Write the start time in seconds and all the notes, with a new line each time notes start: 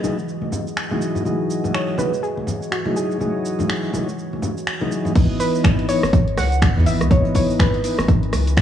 Already playing: E3 G#3 F#4 B4 D#5
0.03 E3 F#3 G#3 D#4, high bongo, high conga, cabasa
0.19 cabasa
0.28 cabasa
0.42 high conga
0.52 low conga, cabasa
0.67 cabasa
0.77 finger snap, cabasa
0.91 E3 F#3 G#3 D#4, high bongo, high conga
1.02 cabasa
1.15 low conga, cabasa
1.25 E3 F#3 G#3 D#4 C#5, high conga, cabasa
1.50 cabasa
1.64 high bongo, high conga, low conga, cabasa
1.74 C#5, finger snap, cabasa
1.98 E3 F#3 G#3 D#4 B4, high bongo, high conga, cabasa
2.14 cabasa
2.23 G#4, cabasa
2.37 high conga
2.47 low conga, cabasa
2.63 cabasa
2.72 F#4, finger snap, cabasa
2.85 E3 F#3 G#3 D#4, high conga
2.96 G#4, cabasa
3.11 cabasa
3.20 E3 F#3 G#3 D#4, high conga, cabasa
3.45 cabasa
3.59 high bongo, high conga, low conga, cabasa
3.70 finger snap, cabasa
3.93 E3 F#3 G#3 D#4, high bongo, high conga, cabasa
4.09 cabasa
4.19 cabasa
4.33 high conga
4.42 low conga, cabasa
4.58 cabasa
4.67 finger snap, cabasa
4.81 E3 F#3 G#3 D#4, high bongo, high conga
4.92 cabasa
5.05 low conga, cabasa
5.15 C#2 E3 B3 D#4 B4, kick, closed hi-hat, crash, cabasa
5.40 B4, closed hi-hat, open hi-hat, cabasa
5.55 cabasa
5.64 finger snap, kick, snare, closed hi-hat, cabasa
5.79 closed hi-hat
5.88 E3 B3 D#4 C#5, closed hi-hat, open hi-hat, cabasa
6.03 G#1, cross-stick, snare, cabasa
6.13 kick, closed hi-hat, cabasa
6.28 closed hi-hat
6.38 C#2 F#5, cross-stick, snare, closed hi-hat, open hi-hat, cabasa
6.52 closed hi-hat, cabasa
6.62 finger snap, kick, snare, closed hi-hat, cabasa
6.76 E2 E3 B3 D#4, snare
6.86 G#1 E5, closed hi-hat, open hi-hat, cabasa
7.01 C#2, cross-stick, closed hi-hat, cabasa
7.10 C#2 E3 B3 D#4 C#5, kick, closed hi-hat, cabasa
7.25 closed hi-hat
7.34 C#5, kick, closed hi-hat, open hi-hat, cabasa
7.50 cabasa
7.59 B4, finger snap, kick, snare, closed hi-hat, cabasa
7.74 closed hi-hat
7.84 E3 B3 D#4, closed hi-hat, open hi-hat, cabasa
7.98 G#1, cross-stick, snare, cabasa
8.08 kick, closed hi-hat, cabasa
8.23 closed hi-hat
8.33 C#2, cross-stick, closed hi-hat, open hi-hat, cabasa
8.47 closed hi-hat, cabasa
8.56 finger snap, kick, snare, closed hi-hat, cabasa